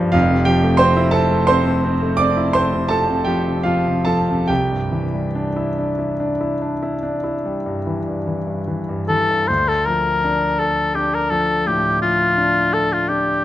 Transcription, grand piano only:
0.00 0.10 C2 medium
0.00 0.17 G2 medium
0.00 0.17 F3 medium
0.00 0.17 G3 medium
0.00 0.12 F4 medium
0.00 0.16 G4 medium
0.12 4.44 F1 medium
0.12 4.45 F2 medium
0.12 0.44 F4 medium
0.12 0.46 F5 loud
0.31 0.57 C3 medium
0.45 0.74 F3 medium
0.45 0.77 G4 medium
0.45 0.79 G5 loud
0.64 0.90 A3 medium
0.77 1.07 C4 medium
0.77 1.11 C5 medium
0.77 1.12 C6 loud
0.97 1.24 E4 medium
1.11 1.41 C4 medium
1.11 1.45 A4 medium
1.11 1.47 A5 loud
1.31 1.59 A3 medium
1.47 1.76 C4 medium
1.47 2.15 C5 medium
1.47 2.18 C6 loud
1.67 1.94 A3 medium
1.84 2.12 C4 medium
2.02 2.30 A3 medium
2.17 2.48 C4 medium
2.17 2.52 D5 medium
2.17 2.54 D6 loud
2.37 2.66 E4 medium
2.53 2.84 A3 medium
2.53 2.88 C5 medium
2.53 2.90 C6 loud
2.73 3.02 C3 soft
2.89 3.20 F3 medium
2.89 3.24 A4 medium
2.89 3.26 A5 loud
3.09 3.38 C3 soft
3.24 3.57 F3 soft
3.24 3.62 G4 medium
3.24 3.64 G5 medium
3.46 3.78 C3 soft
3.63 3.98 F3 soft
3.63 4.03 F4 medium
3.63 4.05 F5 medium
3.86 4.19 C3 soft
4.05 4.41 F3 soft
4.05 4.46 A4 medium
4.05 4.48 A5 medium
4.29 4.50 C3 soft
4.48 9.45 C2 medium
4.48 9.03 G4 medium
4.48 9.07 G5 medium
4.71 5.05 G2 soft
4.92 5.26 E3 soft
5.14 5.47 G3 soft
5.35 5.69 D4 medium
5.56 5.90 E4 soft
5.78 6.11 D4 soft
5.99 6.32 E4 soft
6.20 6.53 D4 medium
6.41 6.73 E4 soft
6.62 6.94 D4 medium
6.83 7.15 E4 soft
7.03 7.35 D4 medium
7.24 7.56 E4 soft
7.45 7.77 G3 soft
7.66 7.98 G2 soft
7.87 8.18 E3 soft
8.07 8.38 G2 soft
8.27 8.58 E3 soft
8.47 8.79 G2 soft
8.68 9.00 E3 soft
8.89 9.22 G2 soft
9.10 9.42 E3 soft
9.31 9.49 G2 soft
9.50 11.63 D2 medium
9.88 10.45 F3 soft
10.24 10.81 D4 medium
10.60 11.17 A4 medium
10.96 11.52 D4 soft
11.32 11.88 F3 soft
11.67 12.23 A2 soft
12.02 12.59 F3 soft
12.37 12.94 D4 soft
12.73 13.28 A4 soft
13.09 13.44 D4 soft

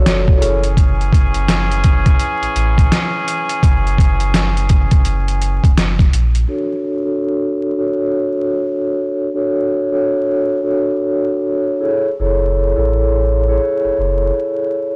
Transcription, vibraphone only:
0.00 0.41 F#4 medium
0.00 0.37 A4 medium
0.00 0.38 C#5 loud
0.00 0.41 D5 loud
0.38 0.63 E4 medium
0.38 0.63 G#4 medium
0.38 0.63 A4 medium
0.38 0.64 C#5 loud
6.48 7.00 D4 medium
6.48 7.01 F#4 medium
6.48 7.01 A4 medium
6.48 7.01 C#5 medium
7.05 7.70 D4 medium
7.05 7.70 F#4 medium
7.05 7.70 A4 medium
7.05 7.70 C#5 medium
7.77 9.24 D4 medium
7.77 9.24 F#4 medium
7.77 9.24 A4 medium
7.77 9.25 C#5 loud
9.34 9.86 D4 medium
9.34 9.87 F#4 medium
9.34 9.87 A4 medium
9.34 9.87 C#5 loud
9.91 10.56 D4 medium
9.91 10.56 F#4 medium
9.91 10.56 A4 medium
9.91 10.57 C#5 loud
10.63 11.84 D4 medium
10.63 11.84 F#4 medium
10.63 11.80 A4 medium
10.63 11.81 C#5 medium
11.81 12.06 E4 medium
11.81 12.06 G#4 medium
11.81 12.06 A4 medium
11.81 12.07 C#5 medium
12.20 12.72 E4 medium
12.20 12.72 G#4 medium
12.20 12.73 A4 medium
12.20 12.73 C#5 loud
12.76 13.41 E4 medium
12.76 13.41 G#4 medium
12.76 13.42 A4 medium
12.76 13.42 C#5 loud
13.48 14.95 E4 medium
13.48 14.96 G#4 medium
13.48 14.96 A4 medium
13.48 14.96 C#5 loud

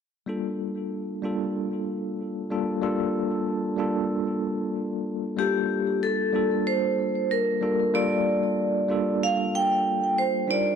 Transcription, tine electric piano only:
0.26 1.19 G3 medium
0.26 1.20 A#3 medium
0.26 1.20 D4 medium
0.26 1.21 F4 medium
0.26 1.21 A4 medium
1.22 2.47 G3 medium
1.22 2.47 A#3 medium
1.22 2.48 D4 medium
1.22 2.48 F4 medium
1.22 2.49 A4 medium
2.50 2.79 G3 medium
2.50 2.79 A#3 medium
2.50 2.80 D4 medium
2.50 2.80 F4 medium
2.50 2.80 A4 medium
2.82 3.01 G3 medium
2.82 3.01 A#3 medium
2.82 3.01 D4 medium
2.82 3.01 F4 medium
2.82 3.02 A4 loud
3.77 5.34 G3 medium
3.77 5.34 A#3 medium
3.77 5.35 D4 medium
3.77 5.35 F4 medium
3.77 5.35 A4 medium
5.36 6.30 G3 medium
5.36 6.30 A#3 medium
5.36 6.31 D4 medium
5.36 6.31 F4 medium
5.36 6.31 A4 medium
6.32 7.57 G3 medium
6.32 7.58 A#3 medium
6.32 7.58 D4 medium
6.32 7.59 F4 medium
6.32 7.59 A4 medium
7.61 7.90 G3 medium
7.61 7.90 A#3 medium
7.61 7.91 D4 medium
7.61 7.91 F4 medium
7.61 7.91 A4 medium
7.94 8.12 G3 medium
7.94 8.12 A#3 medium
7.94 8.13 D4 medium
7.94 8.13 F4 medium
7.94 8.13 A4 loud
8.88 10.45 G3 medium
8.88 10.45 A#3 medium
8.88 10.46 D4 medium
8.88 10.46 F4 medium
8.88 10.46 A4 medium
10.47 10.75 G3 medium
10.47 10.75 D4 medium
10.47 10.75 D#4 medium
10.47 10.75 F4 medium
10.47 10.75 A#4 medium

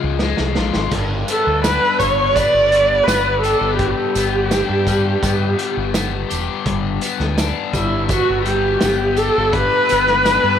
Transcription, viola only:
1.29 1.62 A4 medium
1.65 2.00 B4 loud
1.98 2.36 C#5 loud
2.35 3.05 D5 loud
3.03 3.39 B4 loud
3.40 3.75 A4 medium
3.75 3.87 G4 medium
3.85 3.91 F#4 medium
3.85 6.29 G4 medium
7.75 8.08 E4 medium
8.11 8.44 F#4 medium
8.45 9.18 G4 medium
9.17 9.54 A4 loud
9.53 10.59 B4 loud

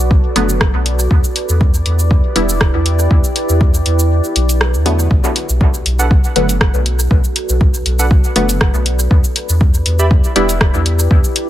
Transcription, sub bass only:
0.00 0.21 B1 medium
0.36 0.71 F#1 medium
0.74 1.08 B1 medium
1.11 1.22 E2 loud
1.49 1.83 E2 medium
1.86 2.21 E2 medium
2.36 2.71 E1 loud
2.74 3.08 E2 medium
3.11 3.22 E2 loud
3.49 3.83 E2 medium
3.86 4.21 E2 medium
4.36 4.76 B1 medium
4.74 5.08 E2 medium
5.11 5.22 B1 loud
5.49 5.83 B1 medium
5.86 6.21 B1 medium
6.36 6.71 F#1 loud
6.74 7.08 B1 medium
7.11 7.22 B1 loud
7.49 7.83 B1 medium
7.86 8.21 B1 medium
8.36 8.71 F#1 loud
8.74 9.08 B1 medium
9.11 9.22 E2 loud
9.49 9.83 E2 medium
9.86 10.21 E2 medium
10.36 10.71 E1 loud
10.74 11.08 E2 medium
11.11 11.22 E2 loud

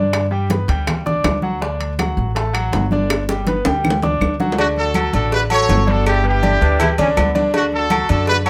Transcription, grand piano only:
0.00 0.25 D3 medium
0.00 0.25 D4 medium
0.00 0.25 D5 medium
0.31 0.47 G3 medium
0.31 0.47 G4 medium
0.31 0.47 G5 medium
0.50 0.66 B3 medium
0.50 0.66 B4 medium
0.50 0.66 B5 medium
0.70 1.00 G3 medium
0.70 1.00 G4 medium
0.70 1.00 G5 medium
1.06 1.37 D4 medium
1.06 1.37 D5 medium
1.06 1.37 D6 medium
1.43 1.58 F#3 medium
1.43 1.58 F#4 medium
1.43 1.59 F#5 medium
1.61 1.92 D3 medium
1.61 1.92 D4 medium
1.61 1.92 D5 medium
1.99 2.29 F#3 medium
1.99 2.30 F#4 medium
1.99 2.30 F#5 medium
2.35 2.51 A3 medium
2.35 2.51 A4 medium
2.35 2.51 A5 medium
2.53 2.84 F#3 medium
2.53 2.85 F#4 medium
2.53 2.85 F#5 medium
2.92 3.22 D3 medium
2.92 3.22 D4 medium
2.92 3.23 D5 medium
3.29 3.44 G3 medium
3.29 3.44 G4 medium
3.29 3.44 G5 medium
3.47 3.63 B3 medium
3.47 3.63 B4 medium
3.47 3.63 B5 medium
3.66 3.96 G3 medium
3.66 3.96 G4 medium
3.66 3.97 G5 medium
4.03 4.33 D4 medium
4.03 4.34 D5 medium
4.03 4.34 D6 medium
4.40 4.55 F#3 medium
4.40 4.55 F#4 medium
4.40 4.56 F#5 medium
4.58 4.89 D3 medium
4.58 4.89 D4 medium
4.58 4.89 D5 medium
4.95 5.11 F#3 medium
4.95 5.11 F#4 medium
4.95 5.11 A4 medium
5.13 5.44 D3 medium
5.13 5.44 D4 medium
5.13 5.44 D5 medium
5.51 5.81 F#3 medium
5.51 5.81 F#4 medium
5.51 5.81 A4 medium
5.87 6.18 D3 loud
5.87 6.18 D4 medium
5.87 6.18 D5 loud
6.24 6.39 G3 medium
6.24 6.40 G4 medium
6.24 6.40 B4 medium
6.43 6.58 D3 medium
6.43 6.58 D4 medium
6.43 6.58 D5 medium
6.61 6.92 G3 medium
6.61 6.92 G4 medium
6.61 6.92 B4 medium
6.98 7.29 D3 loud
6.98 7.29 D4 loud
6.98 7.29 D5 loud
7.35 7.50 D3 medium
7.35 7.51 D4 medium
7.35 7.50 D5 medium
7.53 7.84 D3 medium
7.53 7.84 D4 medium
7.53 7.84 D5 medium
7.91 8.06 F#3 medium
7.91 8.06 F#4 medium
7.91 8.06 A4 medium
8.09 8.40 D3 medium
8.09 8.40 D4 medium
8.09 8.40 D5 medium
8.46 8.50 F#3 medium
8.46 8.50 F#4 loud
8.46 8.50 A4 medium

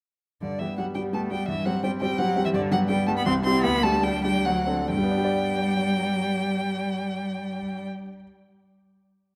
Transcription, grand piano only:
0.42 0.60 G2 soft
0.60 0.76 G3 soft
0.60 0.77 B3 soft
0.60 0.77 G4 soft
0.78 0.94 G3 soft
0.78 0.94 B3 soft
0.78 0.95 G4 soft
0.95 1.11 G3 soft
0.95 1.12 B3 soft
0.95 1.12 G4 soft
1.13 1.29 G3 soft
1.13 1.30 B3 soft
1.13 1.30 G4 soft
1.31 1.47 G3 soft
1.31 1.47 B3 soft
1.31 1.48 G4 soft
1.48 1.66 G2 medium
1.66 1.82 G3 soft
1.66 1.82 C4 soft
1.66 1.82 G4 soft
1.83 1.99 G3 soft
1.83 2.00 C4 soft
1.83 2.00 G4 soft
2.02 2.17 G3 soft
2.02 2.17 C4 soft
2.02 2.18 G4 soft
2.19 2.35 G3 soft
2.19 2.35 C4 soft
2.19 2.35 G4 medium
2.36 2.52 G3 medium
2.36 2.52 C4 soft
2.36 2.52 G4 medium
2.54 2.71 G2 medium
2.71 2.88 G3 soft
2.71 2.88 B3 soft
2.71 2.88 G4 medium
2.89 3.06 G3 medium
2.89 3.06 B3 medium
2.89 3.06 G4 medium
3.08 3.25 G3 medium
3.08 3.25 B3 medium
3.08 3.25 G4 medium
3.26 3.44 C2 medium
3.45 3.62 G3 medium
3.45 3.63 E4 medium
3.45 3.63 G4 medium
3.64 3.83 D2 medium
3.84 4.02 G3 medium
3.84 4.02 D4 soft
3.84 4.02 G4 medium
4.03 4.22 G3 medium
4.03 4.22 D4 medium
4.03 4.22 G4 medium
4.24 4.43 G3 soft
4.24 4.44 D4 soft
4.24 4.44 G4 soft
4.46 4.67 D2 medium
4.67 4.87 C4 soft
4.67 4.87 D4 soft
4.67 4.88 A4 soft
4.90 7.86 G2 medium
4.97 7.94 G3 medium
5.04 8.00 B3 medium
5.11 8.08 D4 medium
5.18 8.14 G4 medium
5.25 8.21 D5 medium

